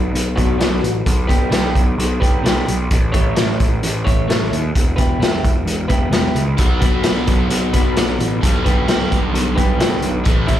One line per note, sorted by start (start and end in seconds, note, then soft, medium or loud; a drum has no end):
0.00 0.11 B1 medium
0.14 0.33 B1 medium
0.14 closed hi-hat medium
0.36 0.56 B1 medium
0.36 0.57 F#3 medium
0.36 0.58 B3 medium
0.36 0.58 D4 medium
0.36 0.58 F#4 medium
0.36 kick medium
0.36 closed hi-hat medium
0.58 0.79 B1 medium
0.58 0.89 F#3 medium
0.58 0.89 B3 medium
0.58 0.89 D4 medium
0.58 0.89 F#4 medium
0.58 snare loud
0.58 closed hi-hat medium
0.82 1.02 A1 medium
0.82 closed hi-hat medium
1.06 1.26 B1 medium
1.06 kick loud
1.06 closed hi-hat medium
1.27 1.48 B1 medium
1.27 1.49 B3 medium
1.27 1.50 D4 medium
1.27 1.50 G4 medium
1.27 1.50 B4 medium
1.27 kick medium
1.27 closed hi-hat medium
1.50 1.71 B1 medium
1.50 1.81 B3 medium
1.50 1.81 D4 medium
1.50 1.81 G4 medium
1.50 1.81 B4 medium
1.50 snare loud
1.50 closed hi-hat medium
1.75 1.94 B1 medium
1.75 kick medium
1.75 closed hi-hat medium
1.98 2.17 B1 medium
1.98 closed hi-hat medium
2.20 2.41 B1 medium
2.20 2.42 B3 medium
2.20 2.43 D4 medium
2.20 2.43 G4 medium
2.20 2.43 B4 medium
2.20 kick medium
2.20 closed hi-hat medium
2.43 2.63 B1 medium
2.43 2.73 B3 medium
2.43 2.74 D4 medium
2.43 2.74 G4 medium
2.43 2.74 B4 medium
2.43 snare loud
2.43 closed hi-hat medium
2.68 2.87 B1 medium
2.68 closed hi-hat medium
2.91 3.10 A1 medium
2.91 kick loud
2.91 closed hi-hat medium
3.12 3.33 A1 medium
3.12 3.34 A3 medium
3.12 3.34 E4 medium
3.12 3.34 A4 medium
3.12 3.34 C#5 medium
3.12 kick medium
3.12 closed hi-hat medium
3.35 3.56 A1 medium
3.35 3.65 A3 medium
3.35 3.66 E4 medium
3.35 3.66 A4 medium
3.35 3.66 C#5 medium
3.35 snare loud
3.35 closed hi-hat medium
3.60 3.79 A1 medium
3.60 kick medium
3.60 closed hi-hat medium
3.83 4.02 A1 medium
3.83 closed hi-hat medium
4.04 4.25 A1 medium
4.04 4.26 A3 medium
4.04 4.27 E4 medium
4.04 4.27 A4 medium
4.04 4.28 C#5 loud
4.04 kick medium
4.04 closed hi-hat medium
4.28 4.48 A1 medium
4.28 4.58 A3 medium
4.28 4.58 E4 medium
4.28 4.58 A4 medium
4.28 4.58 C#5 medium
4.28 snare loud
4.28 closed hi-hat medium
4.51 4.70 D#2 medium
4.51 closed hi-hat medium
4.75 4.94 E1 medium
4.75 kick loud
4.75 closed hi-hat medium
4.96 5.17 E1 medium
4.96 5.19 B3 medium
4.96 5.19 E4 medium
4.96 5.20 G4 medium
4.96 5.20 B4 medium
4.96 kick medium
4.96 closed hi-hat medium
5.20 5.39 E1 medium
5.20 5.50 B3 medium
5.20 5.50 E4 medium
5.20 5.50 G4 medium
5.20 5.51 B4 medium
5.20 snare loud
5.20 closed hi-hat medium
5.45 5.63 E1 medium
5.45 kick medium
5.45 closed hi-hat medium
5.65 5.85 E1 medium
5.65 closed hi-hat medium
5.88 6.09 E1 medium
5.88 6.10 B3 medium
5.88 6.11 E4 medium
5.88 6.11 G4 medium
5.88 6.11 B4 medium
5.88 kick medium
5.88 closed hi-hat medium
6.11 6.30 E1 medium
6.11 6.41 B3 medium
6.11 6.42 E4 medium
6.11 6.42 G4 medium
6.11 6.42 B4 medium
6.11 snare loud
6.11 closed hi-hat medium
6.34 6.54 C#2 medium
6.34 closed hi-hat medium
6.57 6.78 B1 medium
6.57 8.40 B2 medium
6.57 8.41 F#3 medium
6.57 8.42 B3 medium
6.57 kick loud
6.57 closed hi-hat medium
6.80 7.01 B1 medium
6.80 7.02 B3 medium
6.80 7.03 D4 medium
6.80 7.03 F#4 medium
6.80 7.03 B4 loud
6.80 kick medium
6.80 closed hi-hat medium
7.03 7.23 B1 medium
7.03 7.34 B3 medium
7.03 7.34 D4 medium
7.03 7.34 F#4 medium
7.03 7.34 B4 medium
7.03 snare loud
7.03 closed hi-hat medium
7.27 7.47 B1 medium
7.27 kick medium
7.27 closed hi-hat medium
7.50 7.69 B1 medium
7.50 closed hi-hat medium
7.73 7.93 B1 medium
7.73 7.95 B3 medium
7.73 7.96 D4 medium
7.73 7.96 F#4 medium
7.73 7.96 B4 loud
7.73 kick medium
7.73 closed hi-hat medium
7.96 8.16 B1 medium
7.96 8.26 B3 medium
7.96 8.26 D4 medium
7.96 8.27 F#4 medium
7.96 8.27 B4 medium
7.96 snare loud
7.96 closed hi-hat medium
8.20 8.39 A1 medium
8.20 closed hi-hat medium
8.41 8.62 B1 medium
8.41 10.24 G2 medium
8.41 10.23 D3 medium
8.41 kick loud
8.41 closed hi-hat medium
8.45 10.26 G3 medium
8.64 8.85 B1 medium
8.64 8.86 B3 medium
8.64 8.86 D4 medium
8.64 8.87 G4 medium
8.64 8.87 B4 loud
8.64 kick medium
8.64 closed hi-hat medium
8.88 9.07 B1 medium
8.88 9.18 B3 medium
8.88 9.18 D4 medium
8.88 9.18 G4 medium
8.88 9.18 B4 medium
8.88 snare loud
8.88 closed hi-hat medium
9.12 9.31 B1 medium
9.12 kick medium
9.12 closed hi-hat medium
9.34 9.53 B1 medium
9.34 closed hi-hat medium
9.56 9.77 B1 medium
9.56 9.77 B3 medium
9.56 9.78 D4 medium
9.56 9.78 G4 medium
9.56 9.78 B4 medium
9.56 kick medium
9.56 closed hi-hat medium
9.78 9.99 B1 medium
9.78 10.09 B3 medium
9.78 10.09 D4 medium
9.78 10.09 G4 medium
9.78 10.10 B4 medium
9.78 snare loud
9.78 closed hi-hat medium
10.02 10.22 B1 medium
10.02 closed hi-hat medium
10.24 10.45 A1 medium
10.24 10.60 A2 medium
10.24 10.60 E3 medium
10.24 10.60 A3 medium
10.24 kick loud
10.24 closed hi-hat medium
10.47 10.60 A1 medium
10.47 10.60 E3 medium
10.47 10.60 A3 medium
10.47 10.60 C#4 medium
10.47 10.60 E4 loud
10.47 kick medium
10.47 closed hi-hat medium